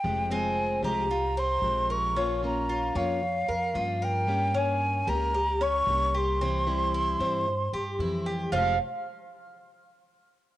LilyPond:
<<
  \new Staff \with { instrumentName = "Flute" } { \time 4/4 \key f \minor \tempo 4 = 113 g''8 aes''4 bes''4 c'''4 des'''8~ | des'''8 bes''4 f''2 g''8~ | g''8 aes''4 bes''4 des'''4 c'''8~ | c'''2.~ c'''8 r8 |
f'''8 r2. r8 | }
  \new Staff \with { instrumentName = "Cuban tres" } { \time 4/4 \key f \minor r8 c'4 g'8 f'8 c'4 bes'8 | des'4 f'8 des''4 bes'8 f'8 bes'8~ | bes'8 des'4 bes'8 g'8 des'4 g'8 | c'4 e'8 c''4 g'8 e'8 g'8 |
<f' c'' f''>8 r2. r8 | }
  \new Staff \with { instrumentName = "Steel-string acoustic guitar" } { \time 4/4 \key f \minor <c f aes c' g'>8 <f aes c'>4 <f aes c' g'>8 r4 <f aes c' g'>4 | <f bes des' f'>8 <bes des' f'>4 <bes des' f'>8 r4 <f bes des' f'>4 | <g bes des' g'>8 <bes des'>4 <bes des' g'>8 r4 <g bes des' g'>4 | <c e g c' e'>8 <e g c' e'>4 <e g c' e'>8 r4 <e g c' e'>4 |
<f, c f aes c' g'>8 r2. r8 | }
  \new Staff \with { instrumentName = "Upright bass" } { \clef bass \time 4/4 \key f \minor f,,4. c,4. bes,,4~ | bes,,4. f,4 f,8 g,4~ | g,4. des,4. c,4~ | c,4. g,4 g,8 f,4 |
f,,8 r2. r8 | }
>>